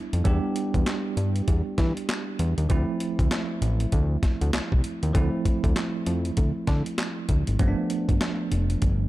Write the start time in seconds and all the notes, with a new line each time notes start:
Already playing: G3 B3 D4 E4
0.13 F2, closed hi-hat
0.24 E2 G3 B3 D4 G4, kick, closed hi-hat
0.56 closed hi-hat
0.74 E2, kick, closed hi-hat
0.86 snare, clap, closed hi-hat
1.17 G2, closed hi-hat
1.36 closed hi-hat
1.48 E2, kick, closed hi-hat
1.78 E3, kick, snare, closed hi-hat
1.97 closed hi-hat
2.09 snare, clap, closed hi-hat
2.39 E2, closed hi-hat
2.58 D#2, closed hi-hat
2.69 D2 F3 A3 C4 E4, kick, closed hi-hat
3.00 closed hi-hat
3.19 D2, kick, closed hi-hat
3.31 snare, clap, closed hi-hat
3.62 A1, closed hi-hat
3.80 closed hi-hat
3.92 D2, kick, closed hi-hat
4.23 kick, snare, closed hi-hat
4.41 D2, closed hi-hat
4.53 C2, snare, clap, closed hi-hat
4.72 C2, kick
4.84 closed hi-hat
5.03 D#2, closed hi-hat
5.13 D2 F3 A3 C4 E4, kick, closed hi-hat
5.45 kick, closed hi-hat
5.64 D2, kick, closed hi-hat
5.76 snare, clap, closed hi-hat
6.06 F2, closed hi-hat
6.25 closed hi-hat
6.37 D2, kick, closed hi-hat
6.67 D3, kick, snare, closed hi-hat
6.86 closed hi-hat
6.98 snare, clap, closed hi-hat
7.29 D2, kick, closed hi-hat
7.47 G#1, closed hi-hat
7.59 G1 F3 A3 B3 C#4, kick, closed hi-hat
7.68 D4
7.90 closed hi-hat
8.09 G1, kick, closed hi-hat
8.21 snare, clap, closed hi-hat
8.52 F1, closed hi-hat
8.70 closed hi-hat
8.82 G1, kick, closed hi-hat